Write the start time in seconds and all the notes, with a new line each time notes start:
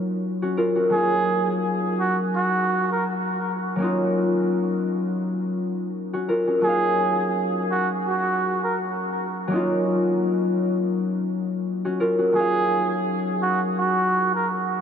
Already playing: F#3 A#3 C#4 D#4 F4
0.42 C#4 F#4
0.57 F4 A#4
0.76 C#4 F#4
0.90 F#3 A#3 C#4 G#4
0.95 D#4 F5
2.00 F#4
2.36 F#4
2.92 A#4
3.76 F#3 A#3 C#4
3.82 D#4 F4
6.13 C#4 F#4
6.29 F4 A#4
6.47 C#4 F#4
6.61 F#3 A#3 G#4
6.65 C#4 D#4 F5
7.71 F#4
8.07 F#4
8.64 A#4
9.47 F#3 A#3 C#4
9.53 D#4 F4
11.85 C#4 F#4
12.00 F4 A#4
12.19 C#4 F#4
12.32 F#3 A#3 C#4 G#4
12.38 D#4 F5
13.43 F#4
13.79 F#4
14.35 A#4